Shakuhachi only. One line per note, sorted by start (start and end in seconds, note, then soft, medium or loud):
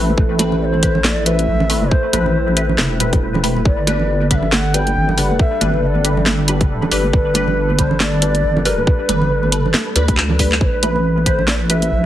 0.61 1.06 C5 medium
0.61 0.66 D5 medium
1.04 1.27 D5 loud
1.26 1.92 E5 loud
1.91 2.78 C5 medium
3.66 4.27 D5 medium
4.31 4.36 F#5 medium
4.35 4.54 E5 loud
4.52 4.76 F#5 loud
4.74 5.20 G5 loud
5.18 5.39 F#5 loud
5.40 5.80 E5 loud
5.83 6.23 D5 medium
5.83 5.88 E5 medium
7.14 7.81 B4 loud
7.79 8.00 C5 loud
8.01 8.67 D5 loud
8.66 8.81 A#4 loud
8.81 10.18 B4 loud
10.61 10.66 C5 medium
10.65 11.28 B4 medium
11.27 11.48 C5 medium
11.49 11.55 D5 loud
11.70 12.06 E5 loud